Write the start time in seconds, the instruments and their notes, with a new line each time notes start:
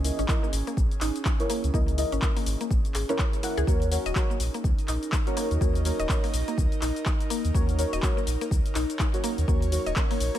Already playing: sub bass C#2, analog synth pad C#4 G#4
0.04 synth stab E4 A#4 D#5, open hi-hat, shaker
0.19 sub bass G#1, synth arpeggio sound C#4, closed hi-hat, shaker
0.28 synth stab E4 A#4 D#5, kick, clap, shaker
0.43 synth arpeggio sound A#3, shaker
0.53 sub bass G#1, open hi-hat, shaker
0.67 synth arpeggio sound A#3, closed hi-hat, shaker
0.77 sub bass A#1, kick, shaker
0.91 closed hi-hat, shaker
1.01 sub bass G#1, synth arpeggio sound D#4, clap, open hi-hat, shaker
1.16 closed hi-hat, shaker
1.25 synth arpeggio sound D#4, kick, clap, shaker
1.39 synth stab E4 A#4 C#5, closed hi-hat, shaker
1.50 synth arpeggio sound A#3, open hi-hat, shaker
1.64 sub bass C#2, closed hi-hat, shaker
1.73 sub bass C#2, synth arpeggio sound A#3, synth stab E4 A#4 D#5, kick, shaker
1.88 closed hi-hat, shaker
1.98 synth stab E4 A#4 D#5, open hi-hat, shaker
2.12 sub bass G#1, synth arpeggio sound C#4, closed hi-hat, shaker
2.22 synth stab E4 A#4 D#5, kick, clap, shaker
2.36 synth arpeggio sound A#3, open hi-hat, shaker
2.46 sub bass G#1, open hi-hat, shaker
2.61 synth arpeggio sound A#3, closed hi-hat, shaker
2.71 sub bass A#1, kick, shaker
2.85 closed hi-hat, shaker
2.94 sub bass G#1, synth arpeggio sound G#4, clap, open hi-hat, shaker
3.09 synth arpeggio sound C#4, synth stab E4 A#4 C#5, closed hi-hat, shaker
3.18 synth arpeggio sound C#5, kick, clap, shaker
3.33 closed hi-hat, shaker
3.43 synth arpeggio sound A#3, synth stab E4 A#4 F#5, open hi-hat, shaker
3.57 sub bass C#2, synth arpeggio sound G#4, closed hi-hat, shaker
3.67 sub bass D#2, synth arpeggio sound A#3, analog synth pad D#4, synth stab F#4 A#4 C#5, kick, shaker
3.82 analog synth pad A#4, closed hi-hat, shaker
3.91 synth stab F#4 A#4 C#5, open hi-hat, shaker
4.06 sub bass D#1, synth arpeggio sound D#5, closed hi-hat, shaker
4.15 synth stab F#4 A#4 C#5, kick, clap, shaker
4.30 synth arpeggio sound A#3, shaker
4.40 sub bass A#1, open hi-hat, shaker
4.54 synth arpeggio sound A#3, closed hi-hat, shaker
4.64 sub bass C#2, kick, shaker
4.76 analog synth pad D#5, closed hi-hat, shaker
4.88 sub bass A#1, synth arpeggio sound D#4, clap, open hi-hat, shaker
5.03 closed hi-hat, shaker
5.12 synth arpeggio sound D#4, kick, clap, shaker
5.26 synth stab F#4 A#4 C#5, closed hi-hat, shaker
5.37 synth arpeggio sound A#3, open hi-hat, shaker
5.51 sub bass D#2, closed hi-hat, shaker
5.61 sub bass D#2, synth arpeggio sound A#3, synth stab F#4 A#4 C#5, kick, shaker
5.75 closed hi-hat, shaker
5.85 synth stab F#4 A#4 C#5, open hi-hat, shaker
5.99 sub bass D#1, synth arpeggio sound D#5, closed hi-hat, shaker
6.09 synth stab F#4 A#4 C#5, kick, clap, shaker
6.24 synth arpeggio sound A#3, open hi-hat, shaker
6.34 sub bass A#1, open hi-hat, shaker
6.48 synth arpeggio sound A#3, closed hi-hat, shaker
6.58 sub bass C#2, kick, shaker
6.72 closed hi-hat, shaker
6.81 sub bass A#1, synth arpeggio sound D#4, clap, open hi-hat, shaker
6.96 closed hi-hat, shaker
7.06 synth arpeggio sound D#4, kick, clap, shaker
7.20 closed hi-hat, shaker
7.30 synth arpeggio sound A#3, open hi-hat, shaker
7.45 sub bass D#2, closed hi-hat, shaker
7.54 sub bass D#2, synth arpeggio sound A#3, synth stab F#4 A#4 C#5, kick, shaker
7.69 closed hi-hat, shaker
7.78 synth stab F#4 A#4 C#5, open hi-hat, shaker
7.93 sub bass D#1, synth arpeggio sound D#5, closed hi-hat, shaker
8.02 synth stab F#4 A#4 C#5, kick, clap, shaker
8.17 synth arpeggio sound A#3, shaker
8.27 sub bass A#1, open hi-hat, shaker
8.41 synth arpeggio sound A#3, analog synth pad C#5, closed hi-hat, shaker
8.51 sub bass C#2, kick, shaker
8.66 closed hi-hat, shaker
8.75 sub bass A#1, synth arpeggio sound D#4, clap, open hi-hat, shaker
8.90 closed hi-hat, shaker
8.99 synth arpeggio sound D#4, kick, clap, shaker
9.13 synth stab F#4 A#4 C#5, closed hi-hat, shaker
9.24 synth arpeggio sound A#3, open hi-hat, shaker
9.38 sub bass D#2, closed hi-hat, shaker
9.48 sub bass D#2, synth arpeggio sound A#3, synth stab F#4 A#4 C#5, kick, shaker
9.62 closed hi-hat, shaker
9.72 synth stab F#4 A#4 C#5, open hi-hat, shaker
9.86 sub bass D#1, synth arpeggio sound D#5, closed hi-hat, shaker
9.96 synth stab F#4 A#4 C#5, kick, clap, shaker
10.11 synth arpeggio sound A#3, open hi-hat, shaker
10.20 sub bass A#1, open hi-hat, shaker
10.35 synth arpeggio sound A#3, closed hi-hat, shaker